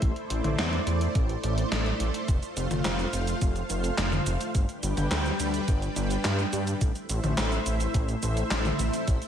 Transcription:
Already playing: A3 E4 C5
0.02 A1 D5, kick, closed hi-hat
0.16 closed hi-hat
0.30 A1, closed hi-hat
0.44 A1, closed hi-hat, mid tom
0.59 E2, snare, closed hi-hat
0.73 closed hi-hat
0.87 E2, closed hi-hat
1.01 closed hi-hat
1.15 A1, kick, closed hi-hat
1.29 closed hi-hat
1.43 A1, closed hi-hat
1.58 closed hi-hat
1.72 A1, snare, closed hi-hat
1.86 closed hi-hat
2.00 A1, closed hi-hat
2.14 closed hi-hat
2.28 F1 F4 F5, kick, closed hi-hat, cabasa
2.43 closed hi-hat, cabasa
2.57 F1, closed hi-hat, cabasa
2.71 F1, closed hi-hat, mid tom, cabasa
2.85 F1, snare, clap, closed hi-hat, cabasa
2.99 closed hi-hat, cabasa
3.13 F1, closed hi-hat, cabasa
3.27 closed hi-hat, cabasa
3.42 F1, kick, closed hi-hat, cabasa
3.56 closed hi-hat, cabasa
3.70 F1, closed hi-hat, cabasa
3.84 closed hi-hat, cabasa
3.98 F1, snare, clap, closed hi-hat, cabasa
4.12 closed hi-hat, mid tom, cabasa
4.26 F1, closed hi-hat, cabasa
4.41 closed hi-hat, cabasa
4.55 G1 G3 D4 B4 G5, kick, closed hi-hat, cabasa
4.69 closed hi-hat, cabasa
4.83 G1, closed hi-hat, cabasa
4.97 G1, closed hi-hat, mid tom, cabasa
5.11 D2, snare, clap, closed hi-hat, cabasa
5.26 closed hi-hat, cabasa
5.40 D2, closed hi-hat, cabasa
5.54 closed hi-hat, cabasa
5.68 G1, kick, closed hi-hat, cabasa
5.82 closed hi-hat, cabasa
5.96 G1, closed hi-hat, cabasa
6.10 closed hi-hat, cabasa
6.25 G2, snare, clap, closed hi-hat, cabasa
6.39 closed hi-hat, cabasa
6.53 G2, closed hi-hat, cabasa
6.67 closed hi-hat, cabasa
6.81 A1 A3 E4 C5 E5, kick, closed hi-hat, cabasa
6.95 closed hi-hat, cabasa
7.09 A1, closed hi-hat, cabasa
7.24 A1, closed hi-hat, mid tom, cabasa
7.38 A1, snare, clap, closed hi-hat, cabasa
7.52 closed hi-hat, cabasa
7.66 A1, closed hi-hat, cabasa
7.80 closed hi-hat, cabasa
7.94 A1, kick, closed hi-hat, cabasa
8.09 closed hi-hat, cabasa
8.23 A1, closed hi-hat, cabasa
8.37 closed hi-hat, cabasa
8.51 A1, snare, clap, closed hi-hat, cabasa
8.65 closed hi-hat, mid tom, cabasa
8.79 A1, closed hi-hat, cabasa
8.93 closed hi-hat, cabasa
9.08 A1, kick, closed hi-hat, cabasa
9.22 closed hi-hat, cabasa

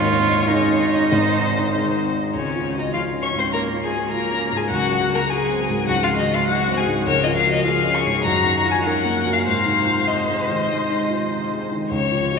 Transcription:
Already playing: G#1 G#2 F4 C#5 D#5
0.48 C#4 D#4 G#4
1.12 G#1 G#2 C5
1.74 C4 D#4 G#4
2.33 C#2 C#3 C#4 C#5
2.55 F4
2.75 D#3 F#4
2.79 D#4 D#5
2.93 F3 F4 F5
3.14 C#4
3.23 C#4 C#5 C#6
3.35 G#2 C4 C5
3.40 C6
3.53 A#3 C#4 A#4 A#5
3.73 F4
3.83 G#3 G#4 G#5
3.93 F#4
4.12 A#3 F4 A#4 A#5
4.32 C#4
4.52 G#2 G#3
4.56 G#4 G#5
4.70 C#2 F#3 F#4 F#5
4.90 F#4
5.10 A#3 G#4
5.14 A#4 A#5
5.28 G#3 F#4 G#4 G#5
5.49 C4
5.69 G#2
5.87 C#2 F#3 F#4 F#5
6.02 F3 F4 F5
6.09 F#4
6.17 D#3 D#4 D#5
6.29 F3 G#4
6.34 F4 F5
6.47 F#3 F#4 F#5
6.67 C4
6.77 G#3 G#4 G#5
6.86 G#2
7.06 C#2 F3 A#4 C#5
7.24 F4 D#5
7.37 F5
7.46 F#4
7.52 D#5
7.65 F4 G#4 F5
7.85 C#4
7.95 C#6
8.06 G#2
8.25 F#2 D#3 F#4 A#5
8.44 D#4
8.65 F4
8.71 G#5
8.85 C#3 D#4 A#4 F#5
9.05 A#3
9.25 F#3
9.33 F5
9.46 G#2 C3 C5 F5
9.66 D#4
9.86 F4
10.06 D#4 D#5
10.28 G#3
10.49 D#3
10.70 G#3
10.90 D#4
11.10 F4
11.30 D#4
11.51 G#3
11.72 D#3
11.91 C#2 F3 C#5
12.11 F4
12.31 F#4

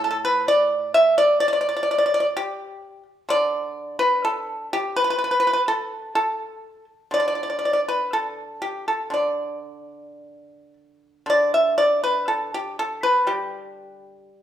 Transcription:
Already playing: A2
0.04 A4
0.11 A4
0.25 B4
0.48 D5
0.94 E5
1.18 D5
1.40 D5
1.48 D5
1.53 D5
1.61 D5
1.69 D5
1.77 D5
1.83 D5
1.91 D5
1.98 D5
2.06 D5
2.14 D5
2.20 D5
2.37 G4
3.29 D3 D5
3.99 B4
4.25 A4
4.73 G4
4.96 B4
5.04 B4
5.10 B4
5.18 B4
5.24 B4
5.31 B4
5.40 B4
5.47 B4
5.53 B4
5.68 A4
6.15 A4
7.11 D3 D5
7.20 D5
7.28 D5
7.35 D5
7.43 D5
7.50 D5
7.59 D5
7.65 D5
7.73 D5
7.88 B4
8.13 A4
8.62 G4
8.88 A4
9.10 D3 D5
11.26 D3 D5
11.54 E5
11.78 D5
12.04 B4
12.28 A4
12.54 G4
12.79 A4
13.03 B4
13.27 G3 G4

